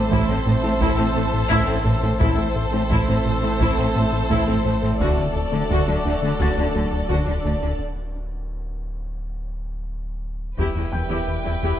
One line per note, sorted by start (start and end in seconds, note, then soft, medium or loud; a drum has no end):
0.00 2.20 A1 medium
0.00 2.20 A3 medium
0.00 2.17 C4 medium
0.00 2.17 E4 medium
0.00 2.17 A4 medium
0.00 2.17 C5 medium
0.00 1.13 D5 soft
0.00 2.17 E5 medium
0.00 1.13 D6 medium
0.11 0.18 A1 medium
0.11 0.22 A2 medium
0.11 0.19 A2 medium
0.11 0.22 A3 medium
0.11 0.28 E4 medium
0.11 taiko medium
0.28 0.36 A2 medium
0.28 0.40 A2 medium
0.28 0.39 C4 medium
0.28 0.36 C4 medium
0.45 0.53 A1 medium
0.45 0.57 A2 medium
0.45 0.54 A2 medium
0.45 0.54 A3 medium
0.45 0.56 A4 medium
0.63 0.71 A2 medium
0.63 0.74 A3 medium
0.63 0.70 C4 medium
0.63 0.74 E4 medium
0.80 0.88 A1 medium
0.80 0.88 A2 medium
0.80 0.92 A2 medium
0.80 0.91 A3 medium
0.80 1.06 C4 medium
0.80 0.97 E4 medium
0.80 1.06 E4 medium
0.80 taiko medium
0.97 1.06 A2 medium
0.97 1.10 A2 medium
0.97 1.05 C4 medium
0.97 1.08 A4 medium
1.14 1.23 A1 medium
1.14 1.23 A2 medium
1.14 1.27 A2 medium
1.14 1.22 A3 medium
1.14 1.26 C4 medium
1.33 1.44 A2 medium
1.49 1.58 A1 medium
1.49 1.57 A2 medium
1.49 1.62 A2 medium
1.49 1.61 A3 medium
1.49 1.66 E4 medium
1.49 3.57 E5 soft
1.49 3.57 E6 medium
1.49 taiko medium
1.66 1.78 A2 medium
1.66 1.75 A2 medium
1.66 1.73 C4 medium
1.66 1.79 A4 medium
1.84 1.93 A1 medium
1.84 1.96 A2 medium
1.84 1.93 A2 medium
1.84 1.91 A3 medium
1.84 1.96 A4 medium
2.01 2.10 A2 medium
2.01 2.14 A2 medium
2.01 2.09 C4 medium
2.01 2.14 A4 medium
2.19 5.02 A1 medium
2.19 2.28 A1 medium
2.19 2.27 A2 medium
2.19 2.31 A2 medium
2.19 2.31 A3 medium
2.19 4.96 A3 medium
2.19 2.46 C4 medium
2.19 4.97 C4 medium
2.19 2.36 E4 medium
2.19 2.46 E4 medium
2.19 4.97 E4 medium
2.19 4.96 A4 medium
2.19 4.96 C5 medium
2.19 4.97 E5 medium
2.19 taiko loud
2.38 2.49 A3 medium
2.56 2.66 A2 medium
2.72 2.81 A2 medium
2.72 2.84 A3 medium
2.72 2.79 C4 medium
2.72 2.84 E4 medium
2.90 2.97 A1 medium
2.90 3.01 A2 medium
2.90 2.99 A2 medium
2.90 3.01 A3 medium
2.90 3.06 E4 medium
2.90 taiko medium
3.07 3.19 A2 medium
3.07 3.16 A2 medium
3.07 3.14 C4 medium
3.07 3.19 C4 medium
3.24 3.33 A1 medium
3.24 3.36 A2 medium
3.24 3.33 A2 medium
3.24 3.31 A3 soft
3.24 3.36 A4 medium
3.42 3.51 A2 soft
3.42 3.54 A3 medium
3.42 3.49 C4 medium
3.42 3.53 E4 medium
3.60 3.67 A1 medium
3.60 3.71 A2 medium
3.60 3.69 A2 medium
3.60 3.71 A3 medium
3.60 3.85 C4 medium
3.60 3.76 E4 medium
3.60 3.85 E4 medium
3.60 taiko medium
3.77 3.89 A2 medium
3.77 3.86 A2 medium
3.77 3.84 C4 medium
3.77 3.89 A4 medium
3.95 4.03 A1 soft
3.95 4.06 A2 medium
3.95 4.03 A2 medium
3.95 4.02 A3 medium
3.95 4.06 C4 medium
4.13 4.23 A2 medium
4.29 4.38 A1 medium
4.29 4.41 A2 medium
4.29 4.38 A2 medium
4.29 4.41 A3 medium
4.29 4.46 E4 medium
4.29 taiko medium
4.46 4.58 A2 medium
4.46 4.56 A2 medium
4.46 4.54 C4 medium
4.46 4.58 A4 medium
4.64 4.72 A1 medium
4.64 4.76 A2 medium
4.64 4.73 A2 medium
4.64 4.72 A3 medium
4.64 4.75 A4 medium
4.82 4.93 A2 medium
4.82 4.91 A2 soft
4.82 4.90 C4 medium
4.82 4.93 A4 medium
5.00 7.79 D1 medium
5.00 5.07 D2 medium
5.00 5.11 D2 medium
5.00 5.10 D3 medium
5.00 5.08 D3 medium
5.00 7.75 A3 medium
5.00 5.25 A3 medium
5.00 7.80 D4 medium
5.00 5.25 F#4 medium
5.00 5.16 F#4 medium
5.00 7.80 F#4 medium
5.00 7.76 A4 medium
5.00 7.79 D5 medium
5.00 7.75 D5 medium
5.00 taiko medium
5.18 5.29 D3 medium
5.36 5.46 D2 medium
5.52 5.63 D3 medium
5.52 5.60 D3 soft
5.52 5.63 A3 medium
5.52 5.60 D4 soft
5.70 5.77 D2 medium
5.70 5.80 D2 medium
5.70 5.81 D3 medium
5.70 5.78 D3 medium
5.70 5.86 F#4 medium
5.70 taiko medium
5.87 5.98 D2 medium
5.87 5.96 D3 soft
5.87 5.98 F#3 medium
5.87 5.94 D4 soft
6.04 6.12 D2 soft
6.04 6.16 D2 medium
6.04 6.13 D3 soft
6.04 6.11 A3 soft
6.04 6.16 D4 medium
6.22 6.33 D3 medium
6.22 6.31 D3 soft
6.22 6.33 A3 medium
6.22 6.29 D4 soft
6.38 6.50 D2 medium
6.38 6.47 D2 medium
6.38 6.51 D3 medium
6.38 6.48 D3 medium
6.38 6.65 A3 soft
6.38 6.55 F#4 medium
6.38 6.65 F#4 soft
6.38 7.76 A6 soft
6.38 taiko medium
6.57 6.68 D2 medium
6.57 6.65 D3 soft
6.57 6.64 D4 soft
6.57 6.68 D4 medium
6.74 6.82 D2 soft
6.74 6.86 D2 medium
6.74 6.82 D3 soft
6.74 6.85 F#3 medium
6.74 6.81 A3 soft
6.92 7.03 D2 medium
7.09 7.17 D2 medium
7.09 7.20 D2 medium
7.09 7.20 D3 medium
7.09 7.17 D3 soft
7.09 7.25 F#4 medium
7.09 taiko medium
7.26 7.38 D2 medium
7.26 7.34 D3 soft
7.26 7.33 D4 soft
7.26 7.38 D4 medium
7.44 7.52 D2 soft
7.44 7.56 D2 medium
7.44 7.52 D3 soft
7.44 7.51 A3 soft
7.44 7.55 D4 medium
7.62 7.73 D2 medium
7.62 7.69 D3 soft
7.62 7.69 D4 soft
7.62 7.73 D4 medium
7.79 10.54 D1 medium
10.58 11.79 E1 medium
10.58 10.65 E2 medium
10.58 10.69 E2 medium
10.58 10.69 E3 medium
10.58 11.79 G3 medium
10.58 11.79 G3 soft
10.58 11.79 E4 soft
10.58 11.79 E4 medium
10.58 10.74 E4 medium
10.58 11.79 G4 medium
10.58 10.75 G4 soft
10.58 11.79 B4 soft
10.58 11.79 B4 medium
10.58 11.79 G5 soft
10.58 taiko soft
10.75 10.86 E2 soft
10.75 10.83 E2 soft
10.75 10.83 B3 soft
10.75 10.82 E4 soft
10.75 10.86 E4 soft
10.92 11.03 E2 soft
10.92 11.00 E2 soft
10.92 11.03 G3 soft
10.92 11.00 E4 soft
10.92 11.79 G5 soft
10.92 11.79 G6 soft
11.08 11.17 E2 medium
11.08 11.21 E2 medium
11.08 11.21 E3 medium
11.08 11.26 E4 medium
11.08 11.26 G4 soft
11.28 11.38 E2 soft
11.44 11.52 E2 soft
11.44 11.56 E2 soft
11.44 11.52 E4 soft
11.44 11.56 E4 soft
11.63 11.70 E2 medium
11.63 11.74 E2 medium
11.63 11.73 E3 medium
11.63 11.79 E4 soft
11.63 11.79 G4 soft
11.63 taiko soft